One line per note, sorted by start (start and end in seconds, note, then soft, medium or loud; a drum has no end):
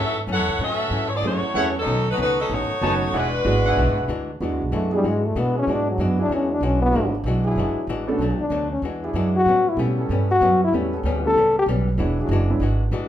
0.00 0.18 F#2 soft
0.00 0.26 G#2 medium
0.00 0.18 E3 soft
0.00 0.19 A3 soft
0.00 0.18 C#4 medium
0.00 0.19 C#4 soft
0.00 0.18 F#4 medium
0.00 0.18 A4 medium
0.00 0.18 E5 loud
0.27 0.39 F#2 medium
0.27 0.49 F#2 medium
0.27 0.50 E3 medium
0.27 0.50 A3 medium
0.27 0.50 C#4 medium
0.32 0.61 E4 medium
0.32 0.60 A4 medium
0.32 0.60 C#5 medium
0.32 0.60 F#5 medium
0.39 0.48 E2 medium
0.48 0.58 C#2 medium
0.59 0.81 F#2 soft
0.59 0.90 A2 medium
0.59 0.82 E3 soft
0.59 0.82 A3 medium
0.59 0.82 C#4 medium
0.64 1.06 C#4 medium
0.64 1.06 F#4 medium
0.64 1.06 A4 medium
0.64 1.06 E5 medium
0.90 1.13 F#2 medium
0.90 1.21 G#2 medium
0.90 1.13 E3 medium
0.90 1.13 A3 medium
0.90 1.13 C#4 medium
1.09 1.13 C#5 medium
1.16 1.26 B3 medium
1.16 1.26 E4 medium
1.16 1.26 G#4 medium
1.16 1.26 D5 medium
1.22 1.41 F#2 medium
1.22 1.45 F#2 soft
1.22 1.45 E3 soft
1.22 1.42 F#3 soft
1.22 1.42 A3 soft
1.22 1.46 A3 medium
1.22 1.42 C#4 soft
1.22 1.42 E4 soft
1.22 1.42 G#4 medium
1.26 1.74 A3 medium
1.26 1.46 C#4 soft
1.26 1.74 E4 medium
1.26 1.74 F#4 medium
1.26 1.74 C#5 medium
1.42 muted upright bass stroke soft
1.54 1.86 E2 medium
1.54 1.76 F#2 medium
1.54 1.76 E3 medium
1.54 1.74 F#3 medium
1.54 1.76 A3 medium
1.54 1.74 A3 soft
1.54 1.77 C#4 medium
1.54 1.74 C#4 soft
1.54 1.69 E4 medium
1.54 1.74 E4 soft
1.54 1.74 G#4 medium
1.54 1.69 A4 medium
1.54 1.69 C#5 medium
1.54 1.69 F#5 loud
1.79 2.07 F#3 medium
1.79 2.07 C#4 medium
1.79 2.07 D#4 medium
1.79 2.07 A4 medium
1.86 2.17 B1 medium
1.86 2.07 B2 soft
1.86 2.08 D#3 soft
1.86 2.08 A3 soft
1.86 2.08 C#4 soft
2.11 2.20 A3 medium
2.11 2.20 D#4 medium
2.11 2.20 F#4 medium
2.11 2.20 B4 medium
2.17 2.49 C#2 medium
2.17 2.39 B2 medium
2.17 2.39 D#3 medium
2.17 2.39 A3 medium
2.17 2.39 C#4 medium
2.22 2.39 A3 medium
2.22 2.39 D#4 medium
2.22 2.39 F#4 medium
2.22 2.39 B4 medium
2.40 2.50 F#3 medium
2.40 2.51 C#4 medium
2.40 2.50 D#4 medium
2.40 2.50 A4 medium
2.49 2.68 A1 medium
2.49 2.71 B2 soft
2.49 2.72 D#3 soft
2.49 2.72 A3 soft
2.49 3.15 A3 medium
2.49 2.73 C#4 medium
2.49 3.15 F#4 medium
2.54 3.15 D#4 medium
2.54 3.16 C#5 medium
2.69 muted upright bass stroke soft
2.81 3.12 F#1 medium
2.81 3.03 B2 medium
2.81 3.03 D#3 medium
2.81 3.14 A3 medium
2.81 3.03 A3 medium
2.81 3.14 B3 soft
2.81 3.14 C#4 soft
2.81 3.03 C#4 medium
2.81 2.95 D#4 medium
2.81 3.14 D#4 soft
2.81 3.14 F#4 medium
2.81 2.95 B4 medium
2.81 2.95 C#5 medium
2.81 2.96 A5 medium
3.13 3.44 E1 medium
3.13 3.35 E3 soft
3.13 3.35 G#3 soft
3.13 3.35 D4 soft
3.13 3.27 E4 medium
3.13 3.35 F#4 medium
3.13 3.27 G#4 medium
3.13 3.27 D5 medium
3.13 3.27 F#5 medium
3.18 4.11 G#3 medium
3.18 4.11 D4 medium
3.18 4.11 F#4 medium
3.18 4.11 B4 medium
3.45 3.76 G#1 medium
3.45 3.66 E3 medium
3.45 3.66 G#3 medium
3.45 3.93 G#3 medium
3.45 3.93 B3 medium
3.45 3.93 D4 medium
3.45 3.67 D4 medium
3.45 3.93 E4 medium
3.45 3.93 F#4 medium
3.45 3.67 F#4 medium
3.65 4.07 E4 medium
3.65 4.07 G#4 medium
3.65 4.07 D5 medium
3.65 4.07 F#5 loud
3.77 3.87 B1 medium
3.77 3.98 E3 soft
3.77 3.98 G#3 medium
3.77 3.99 D4 soft
3.77 3.99 F#4 medium
3.87 3.97 G#1 soft
3.98 4.07 E1 medium
4.08 4.39 D2 medium
4.08 4.30 E3 medium
4.08 4.30 G#3 medium
4.08 4.30 D4 medium
4.08 4.31 F#4 medium
4.40 4.51 E2 medium
4.40 4.62 E3 soft
4.40 4.88 G#3 medium
4.40 4.62 G#3 medium
4.40 4.88 B3 medium
4.40 4.88 D4 medium
4.40 4.63 D4 medium
4.40 4.88 E4 medium
4.40 4.88 F#4 medium
4.40 4.63 F#4 soft
4.51 4.61 D2 medium
4.62 4.71 B1 medium
4.72 5.03 F#2 medium
4.72 4.93 E3 medium
4.72 4.94 G#3 medium
4.72 4.92 A3 medium
4.72 4.93 D4 medium
4.72 4.94 F#4 medium
4.90 5.33 F#3 medium
4.90 5.03 G#3 medium
4.90 5.03 B3 medium
4.90 5.32 D4 medium
4.90 5.03 D4 soft
4.90 5.33 E4 medium
4.90 5.03 E4 soft
4.90 5.32 G#4 medium
4.90 5.03 G#4 medium
4.95 5.09 G3 medium
5.04 5.34 G#2 medium
5.04 5.25 E3 soft
5.04 5.25 G#3 soft
5.04 5.25 D4 soft
5.04 5.26 F#4 soft
5.08 5.28 G#3 medium
5.26 5.42 A3 medium
5.35 5.66 B2 medium
5.35 5.57 E3 medium
5.35 5.57 G#3 medium
5.35 5.57 D4 medium
5.35 5.57 F#4 medium
5.40 5.58 B3 medium
5.55 5.97 F#3 medium
5.55 5.73 C#4 medium
5.55 5.96 D4 medium
5.55 5.97 E4 medium
5.55 5.96 G#4 medium
5.67 5.97 G#2 medium
5.67 5.88 E3 soft
5.67 6.55 G#3 medium
5.67 5.89 G#3 soft
5.67 6.55 B3 soft
5.67 6.55 D4 soft
5.67 5.89 D4 medium
5.67 6.55 E4 soft
5.67 6.55 F#4 medium
5.67 5.90 F#4 soft
5.72 5.89 D4 medium
5.91 6.04 F#3 medium
5.98 6.29 F#2 medium
5.98 6.20 E3 medium
5.98 6.20 G#3 medium
5.98 6.21 D4 medium
5.98 6.21 F#4 medium
6.02 6.20 B3 medium
6.17 6.59 F#3 medium
6.17 6.59 D4 medium
6.17 6.59 E4 medium
6.17 6.59 G#4 medium
6.22 6.35 D4 loud
6.29 6.60 E2 medium
6.29 6.52 E3 soft
6.29 6.52 G#3 soft
6.29 6.52 D4 soft
6.29 6.52 F#4 soft
6.34 6.53 C#4 medium
6.52 6.66 D4 medium
6.61 6.92 B1 medium
6.61 6.83 E3 medium
6.61 6.83 G#3 medium
6.61 6.83 D4 medium
6.61 6.84 F#4 medium
6.65 6.81 C#4 medium
6.81 7.23 F#3 medium
6.81 7.11 B3 medium
6.81 7.22 D4 medium
6.81 7.22 E4 medium
6.81 7.22 F#4 loud
6.92 7.23 G#1 medium
6.92 7.15 E3 soft
6.92 7.11 G#3 medium
6.92 7.15 G#3 soft
6.92 7.11 B3 medium
6.92 7.11 D4 medium
6.92 7.15 D4 medium
6.92 7.11 E4 medium
6.92 7.11 F#4 medium
6.92 7.16 F#4 soft
7.24 7.55 B1 medium
7.24 7.47 E3 medium
7.24 7.47 G#3 medium
7.24 7.47 D4 medium
7.28 7.48 F#4 medium
7.44 7.86 F#3 loud
7.44 7.86 D4 medium
7.44 7.86 E4 medium
7.44 7.85 G#4 loud
7.56 7.74 F#1 medium
7.56 7.78 E3 soft
7.56 7.78 G#3 soft
7.56 7.79 D4 medium
7.56 7.79 F#4 medium
7.75 muted upright bass stroke soft
7.87 8.18 A1 medium
7.87 8.10 E3 medium
7.87 8.10 G#3 medium
7.87 8.10 D4 medium
7.87 8.10 F#4 medium
8.07 8.49 F#3 medium
8.07 8.19 A3 medium
8.07 8.49 B3 medium
8.07 8.19 B3 medium
8.07 8.19 C#4 medium
8.07 8.18 D4 medium
8.07 8.49 D4 medium
8.07 8.49 A4 medium
8.07 8.19 A4 medium
8.18 8.37 B1 medium
8.18 8.41 B2 medium
8.18 8.42 F#3 medium
8.18 8.42 A3 medium
8.23 8.42 D4 medium
8.39 8.69 D4 medium
8.39 muted upright bass stroke soft
8.50 8.81 D2 medium
8.50 8.72 B2 medium
8.50 8.72 F#3 medium
8.50 8.73 A3 medium
8.50 8.73 D4 medium
8.72 8.82 C#4 medium
8.82 9.13 E2 medium
8.82 9.04 E3 soft
8.82 9.05 G#3 soft
8.82 9.05 D4 soft
8.82 9.05 F#4 medium
9.03 9.44 F#3 medium
9.03 9.44 D4 medium
9.03 9.44 E4 medium
9.03 9.44 G#4 loud
9.13 9.45 F#2 medium
9.13 9.36 E3 medium
9.13 9.36 G#3 medium
9.13 9.36 D4 medium
9.13 9.36 F#4 medium
9.36 9.71 F#4 loud
9.46 9.76 A2 medium
9.46 9.67 A2 soft
9.46 9.68 G3 soft
9.46 9.68 B3 soft
9.46 9.68 C#4 medium
9.69 9.79 E4 medium
9.77 9.99 A2 medium
9.77 10.08 B2 medium
9.77 10.25 G3 medium
9.77 9.99 G3 medium
9.77 10.25 A3 medium
9.77 10.25 B3 medium
9.77 10.00 B3 medium
9.77 10.25 C#4 soft
9.77 10.00 C#4 medium
9.77 10.25 E4 medium
9.96 10.38 G3 medium
9.96 10.38 B3 medium
9.96 10.38 C#4 medium
9.96 10.39 A4 loud
10.09 10.40 G2 medium
10.09 10.31 A2 medium
10.09 10.31 G3 medium
10.09 10.31 B3 medium
10.09 10.32 C#4 medium
10.31 10.60 F#4 loud
10.41 10.72 F#2 medium
10.41 10.62 A2 medium
10.41 10.62 G3 medium
10.41 10.62 B3 medium
10.41 10.63 C#4 medium
10.64 10.74 E4 loud
10.72 11.03 E2 medium
10.72 10.94 A2 soft
10.72 10.90 G3 medium
10.72 10.94 G3 soft
10.72 10.90 A3 medium
10.72 10.90 B3 medium
10.72 10.94 B3 medium
10.72 10.91 C#4 medium
10.72 10.95 C#4 soft
10.72 10.91 E4 medium
10.93 11.34 G3 medium
10.93 11.34 B3 medium
10.93 11.34 C#4 medium
10.93 11.34 A4 medium
11.03 11.34 D2 medium
11.03 11.26 A2 medium
11.03 11.26 G3 medium
11.03 11.26 B3 medium
11.03 11.26 C#4 medium
11.25 11.35 G3 medium
11.25 11.35 A3 medium
11.25 11.35 B3 medium
11.25 11.35 C#4 medium
11.25 11.35 E4 medium
11.25 11.55 A4 loud
11.35 11.66 C#2 medium
11.35 11.57 A2 soft
11.35 11.57 G3 soft
11.35 11.58 B3 medium
11.35 11.58 C#4 soft
11.59 11.65 G4 medium
11.66 11.97 B1 medium
11.66 11.89 A2 medium
11.66 11.89 G3 medium
11.66 11.89 B3 medium
11.66 11.89 C#4 medium
11.97 12.28 E1 medium
11.97 12.19 E3 medium
11.97 12.16 F#3 medium
11.97 12.20 G#3 medium
11.97 12.17 G#3 medium
11.97 12.17 B3 medium
11.97 12.20 D4 medium
11.97 12.17 D4 medium
11.97 12.17 E4 medium
11.97 12.20 F#4 medium
12.20 12.60 F#3 medium
12.20 12.60 D4 medium
12.20 12.60 E4 medium
12.20 12.60 G#4 medium
12.29 12.59 F#1 loud
12.29 12.52 E3 medium
12.29 12.52 G#3 medium
12.33 12.52 D4 medium
12.33 12.52 F#4 medium
12.50 12.61 F#3 medium
12.50 12.61 G#3 medium
12.50 12.60 B3 medium
12.50 12.61 D4 medium
12.50 12.61 E4 medium
12.60 12.91 G#1 medium
12.60 12.82 E3 medium
12.60 12.83 G#3 medium
12.60 12.83 D4 medium
12.60 12.83 F#4 medium
12.91 13.08 A1 medium
12.91 13.08 E3 medium
12.91 13.08 G#3 medium
12.91 13.08 D4 medium
12.91 13.08 F#4 medium